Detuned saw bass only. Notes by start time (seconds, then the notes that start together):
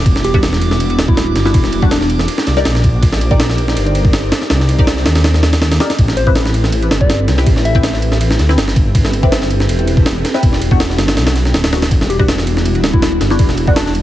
0.06 E1
0.98 D1
1.36 G1
1.54 E1
2.47 C2
2.66 A#1
3.77 G1
4.51 C2
4.79 C2
5.07 D#2
5.99 A1
6.91 G1
7.28 C2
7.47 A1
8.40 D2
8.58 G1
9.69 E1
10.43 E1
10.71 E1
10.99 G1
11.17 B1
11.54 D1
11.91 E1
12.84 D1
13.21 G1
13.39 E1